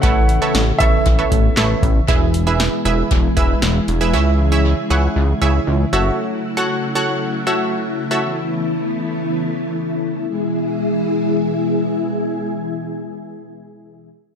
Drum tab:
HH |xxxxxxxx|xxxxxxxx|--------|--------|
CP |------x-|--------|--------|--------|
SD |--o---o-|--o---o-|--------|--------|
BD |o--ooo-o|o---oo--|--------|--------|

HH |--------|--------|--------|
CP |--------|--------|--------|
SD |--------|--------|--------|
BD |--------|--------|--------|